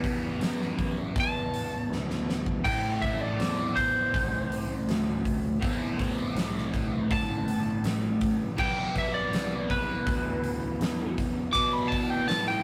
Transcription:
Already playing: E2 E3 G3 B3 E4
0.04 kick, open hi-hat
0.40 F#2, snare, open hi-hat
0.62 snare
0.79 kick, open hi-hat
1.16 E2, kick, open hi-hat
1.20 A5
1.54 open hi-hat
1.89 D2, snare
2.10 snare
2.30 snare
2.46 kick
2.64 A2 E3 A3 C4 E4 G5, kick, open hi-hat, crash
3.02 E5, kick, open hi-hat
3.21 D5
3.39 E2, snare, open hi-hat
3.76 C5, kick, open hi-hat
4.14 C2, kick, open hi-hat
4.52 open hi-hat
4.88 D2, snare, open hi-hat
5.25 kick, open hi-hat
5.60 E2 A2 E3 A3 C4 E4, kick, open hi-hat
5.99 kick, open hi-hat
6.35 C2, snare, open hi-hat
6.58 snare
6.74 kick, open hi-hat
7.11 G1 A5, kick, open hi-hat
7.48 open hi-hat
7.84 A1, snare, open hi-hat
8.21 kick, snare, open hi-hat
8.57 B1 E3 G3 B3 E4 G5, kick, crash
8.96 E5, kick, open hi-hat
9.14 D5
9.32 C2, snare, open hi-hat
9.70 B4, kick, open hi-hat
10.07 D2, kick, open hi-hat
10.44 open hi-hat
10.80 E2, snare, open hi-hat
11.18 kick, snare, open hi-hat
11.52 B2 E3 G3 B3 E4 D6, kick, open hi-hat
11.73 B5
11.88 A5, kick
11.92 open hi-hat
12.10 G5
12.28 A2 A5, snare, open hi-hat
12.48 G5, snare

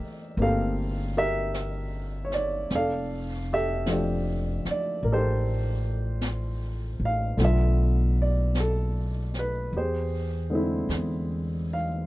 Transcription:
Already playing: E3 A#3 D4 G4 A#4 C5 D5 D#5 E5
0.37 G1 A#3 C4, brush sweep
0.41 G4 A4 A#4 F5
1.17 G4 A#4 E5
1.54 brush sweep, snare, hi-hat pedal
2.25 C#5
2.32 D5, snare
2.70 F1, brush sweep, snare
2.75 A4 D5 F5
3.53 G4 A4 E5
3.86 F3 A3, brush sweep, snare, hi-hat pedal
3.90 D4 G4
4.65 muted upright bass stroke, snare
4.71 D5
5.03 A1 A#4, brush sweep
5.12 G4 A4 C5
6.21 brush sweep, snare, hi-hat pedal
7.00 A1
7.05 F5
7.37 B1 D3 A3 B3, brush sweep, snare
7.41 F4 A4 E5
8.22 D5
8.55 brush sweep, snare, hi-hat pedal
8.60 A4
9.34 snare
9.39 B4
9.72 E2, brush sweep
9.76 G4 G#4 C5
10.50 D3 G#3 C4
10.55 E4
10.89 E2, brush sweep, snare, hi-hat pedal
11.73 F5

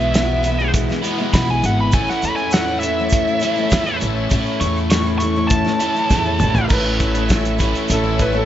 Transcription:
Already playing: B1 E2 B2 E3 G#3 B3 E4 G#4 B4 E5
0.14 E2 B2 E3 G#3 B3 E4, snare, closed hi-hat, shaker
0.43 E3 G#3 B3 E4, closed hi-hat, shaker
0.60 E3 G#3 B3 E4
0.74 kick, closed hi-hat, shaker
0.89 E3 G#3 B3 E4, snare
1.04 E2 B2 E3 G#3 B3 E4, closed hi-hat, shaker
1.18 E3 G#3 B3 E4
1.33 B1 E2 B2 E3 G#3 B3 E4 B5, kick, snare, closed hi-hat, shaker
1.48 E3 G#3 B3 E4 G#5, shaker
1.63 G#1 E3 G#3 B3 E4 F#5, closed hi-hat, shaker
1.80 B5
1.92 A1 A2 E3 A3 C#4 E4 A4 C#5 E5 G#5, kick, closed hi-hat, shaker
2.07 F#5, snare, shaker
2.22 E2 E3 A3 C#4 E4 B5, closed hi-hat, shaker
2.36 G#5, shaker
2.51 A2 E3 A3 C#4 E4 F#5, snare, closed hi-hat, shaker
2.80 E3 A3 C#4 E5, closed hi-hat, shaker
2.85 E4
2.98 A3 C#4 E4
3.10 kick, closed hi-hat, shaker
3.28 A3 C#4 E4
3.40 E3 A3 C#4, closed hi-hat, shaker
3.44 A2 E4
3.56 A3 C#4 E4
3.70 E2 A2 E3 A3 C#4 E4, kick, snare, closed hi-hat, shaker
3.86 A3 C#4 E4, shaker
4.01 A1 E3 A3 C#4 E4, closed hi-hat, shaker
4.30 A1 A2 E3 A3 C#4 E4 A4 C#5, kick, closed hi-hat, shaker
4.46 shaker
4.60 E2 E3 A3 C#4 E4 C#6, closed hi-hat, shaker
4.77 shaker
4.90 A2 E3 A3 C#4 E4 C#6, snare, closed hi-hat, shaker
5.06 shaker
5.18 E3 A3 C#4 C#6, closed hi-hat, shaker
5.23 E4
5.36 A3 C#4 E4
5.48 A5, kick, closed hi-hat, shaker
5.64 A3 C#4 E4, snare
5.80 A2 E3 A3 C#4 E4, closed hi-hat, shaker
5.95 A3 C#4 E4, shaker
6.10 E2 A2 E3 A3 C#4 E4, kick, snare, shaker
6.26 A3 C#4 E4
6.39 A1 E3 A3 C#4 E4, mid tom, shaker
6.44 B3 C4
6.49 D4 E4
6.55 F4 G4, floor tom, shaker
6.61 A4 B4
6.67 A1 A2 E3 A3 A#4 C5 D5, kick, crash, shaker
6.71 C#4 E4 A4 B4 C#5 E5
6.85 A3 C#4 E4
7.00 kick, closed hi-hat, shaker
7.15 A3 C#4 E4, closed hi-hat
7.29 A2 E3 A3 C#4 E4, kick, snare, closed hi-hat, shaker
7.44 closed hi-hat, shaker
7.59 A2 E3 A3 C#4 E4, kick, closed hi-hat, shaker
7.75 closed hi-hat
7.88 A1 A4, closed hi-hat, shaker
8.03 A3 C#4 E4
8.18 E3 A3 C#4 E4 B4, kick, closed hi-hat
8.33 A3 C#4 E4 A4

